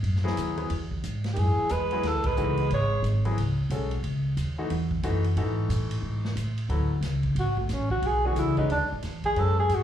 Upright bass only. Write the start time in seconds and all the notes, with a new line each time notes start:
0.03 F#2
0.37 D#2
0.70 E2
1.04 G#2
1.37 F#2
1.58 muted upright bass stroke
1.71 E2
2.04 D#2
2.15 C#2
2.26 G#1
2.38 C#2
2.70 G#1
3.03 G#1
3.37 C#2
3.70 B1
4.03 C#2
4.37 D#2
4.71 E2
5.03 F#2
5.37 G#2
5.69 A2
6.02 G#2
6.36 A2
6.69 D2
7.01 C#2
7.35 G#1
7.69 A1
8.02 B1
8.36 C#2
8.70 D2
8.81 B1
8.92 A1
9.03 E2
9.36 F#2
9.69 G#2